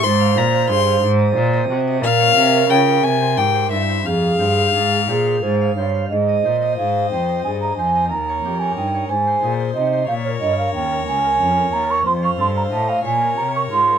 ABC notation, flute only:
X:1
M:6/8
L:1/16
Q:3/8=60
K:Fm
V:1 name="Flute"
c12 | B8- B2 z2 | A6 A2 c2 d2 | [K:Ab] e4 f2 g2 a b a2 |
b3 a g2 a4 e2 | f d e f g2 a4 b d' | c' d' c' b =a f _a2 b d' c'2 |]